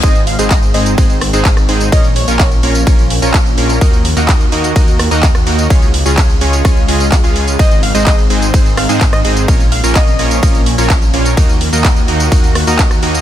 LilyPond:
<<
  \new Staff \with { instrumentName = "Digital synth lead" } { \time 4/4 \key bes \minor \tempo 4 = 127 ees''8 f''16 ees''16 ees''16 r16 ees''16 r2 r16 | ees''16 r16 des''8. r2 r8. | r1 | r1 |
ees''8 f''16 ees''16 ees''16 r4 r16 f''16 r8 ees''16 ees''16 r16 | r8 f''16 r16 ees''4. r4. | r1 | }
  \new Staff \with { instrumentName = "Supersaw synth" } { \time 4/4 \key bes \minor <aes c' ees' aes' c''>16 r8 <aes c' ees' aes' c''>8 r16 <aes c' ees' aes' c''>8 <aes c' ees' aes' c''>16 r8 <aes c' ees' aes' c''>16 r8 <aes c' ees' aes' c''>8 | <bes des' f' bes' des''>16 r8 <bes des' f' bes' des''>8 r16 <bes des' f' bes' des''>8 <bes des' f' bes' des''>16 r8 <bes des' f' bes' des''>16 r8 <bes des' f' bes' des''>8 | <bes ees' ges' bes' ees''>16 r8 <bes ees' ges' bes' ees''>8 r16 <bes ees' ges' bes' ees''>8 <bes ees' ges' bes' ees''>16 r8 <bes ees' ges' bes' ees''>16 r8 <bes ees' ges' bes' ees''>8 | <aes des' f' aes' des''>16 r8 <aes des' f' aes' des''>8 r16 <aes des' f' aes' des''>8 <aes des' f' aes' des''>16 r16 <aes des' f' aes' ees''>16 r8 <aes des' f' aes' f''>8. |
<aes c' ees' aes' c''>16 r8 <aes c' ees' aes' c''>8 r16 <aes c' ees' aes' c''>8 <aes c' ees' aes' c''>16 r8 <aes c' ees' aes' c''>16 r8 <aes c' ees' aes' c''>8 | <bes des' f' bes' des''>16 r8 <bes des' f' bes' des''>8 r16 <bes des' f' bes' des''>8 <bes des' f' bes' des''>16 r8 <bes des' f' bes' des''>16 r8 <bes des' f' bes' des''>8 | <bes ees' ges' bes' ees''>16 r8 <bes ees' ges' bes' ees''>8 r16 <bes ees' ges' bes' ees''>8 <bes ees' ges' bes' ees''>16 r8 <bes ees' ges' bes' ees''>16 r8 <bes ees' ges' bes' ees''>8 | }
  \new Staff \with { instrumentName = "Analog synth pad" } { \time 4/4 \key bes \minor << { <ees c'>1 | <f des'>1 | <ees ges'>1 | <des f'>1 |
<ees c'>1 | <f des'>1 | <ees ges'>1 | } \\ { aes1 | bes1~ | bes1 | aes1~ |
aes1 | bes1 | bes1 | } >> }
  \new Staff \with { instrumentName = "Detuned saw bass" } { \clef bass \time 4/4 \key bes \minor aes,,8. aes,,8. aes,,8 aes,,8. aes,,8. aes,,8 | bes,,8. bes,,8. bes,,8 bes,,8. bes,,8. bes,,8 | ees,8. ees,8. ees,8 ees,8. ees,8. ees,8 | des,8. des,8. des,8 des,8 des,8. des,8. |
aes,,8. aes,,8. aes,,8 aes,,8. aes,8. aes,,8 | bes,,8. bes,,8. bes,,8 bes,,8. bes,,8. bes,,8 | ees,8. ees,8. ees,8 ees,8. ees,8. ees,8 | }
  \new DrumStaff \with { instrumentName = "Drums" } \drummode { \time 4/4 <hh bd cymr tamb>16 <hh tamb>16 hho16 <hh tamb>16 <hc hh bd cymr tamb>16 <hh tamb>16 hho16 <hh tamb>16 <hh bd cymr tamb>16 <hh tamb>16 <hho ss>16 <hh tamb>16 <hc hh bd cymr tamb>16 <hh ss tamb>16 hho16 <hh tamb>16 | <hh bd cymr tamb>16 <hh tamb>16 hho16 <hh tamb>16 <hc hh bd cymr tamb>16 <hh tamb>16 hho16 <hh tamb>16 <hh bd cymr tamb>16 <hh tamb>16 hho16 <hh tamb>16 <hc hh bd cymr tamb>16 <hh tamb>16 hho16 <hh tamb>16 | <hh bd cymr tamb>16 <hh tamb>16 hho16 <hh tamb>16 <hc hh bd cymr tamb>16 <hh tamb>16 hho16 <hh tamb>16 <hh bd cymr tamb>16 <hh tamb>16 <hho ss>16 <hh tamb>16 <hc hh bd cymr tamb>16 <hh ss tamb>16 hho16 <hh tamb>16 | <hh bd cymr tamb>16 <hh tamb>16 hho16 <hh tamb>16 <hc hh bd cymr tamb>16 <hh tamb>16 hho16 <hh tamb>16 <hh bd cymr ss tamb>16 <hh tamb>16 hho16 <hh tamb>16 <hc hh bd cymr tamb>16 <hh tamb>16 hho16 <hh tamb>16 |
<hh bd cymr tamb>16 <hh tamb>16 hho16 <hh tamb>16 <hc hh bd cymr tamb>16 <hh tamb>16 hho16 <hh tamb>16 <hh bd cymr tamb>16 <hh tamb>16 <hho ss>16 <hh tamb>16 <hc hh bd cymr tamb>16 <hh ss tamb>16 hho16 <hh tamb>16 | <hh bd cymr tamb>16 <hh tamb>16 hho16 <hh tamb>16 <hc hh bd cymr tamb>16 <hh tamb>16 hho16 <hh tamb>16 <hh bd cymr tamb>16 <hh tamb>16 hho16 <hh tamb>16 <hc hh bd cymr tamb>16 <hh tamb>16 hho16 <hh tamb>16 | <hh bd cymr tamb>16 <hh tamb>16 hho16 <hh tamb>16 <hc hh bd cymr tamb>16 <hh tamb>16 hho16 <hh tamb>16 <hh bd cymr tamb>16 <hh tamb>16 <hho ss>16 <hh tamb>16 <hc hh bd cymr tamb>16 <hh ss tamb>16 hho16 <hh tamb>16 | }
>>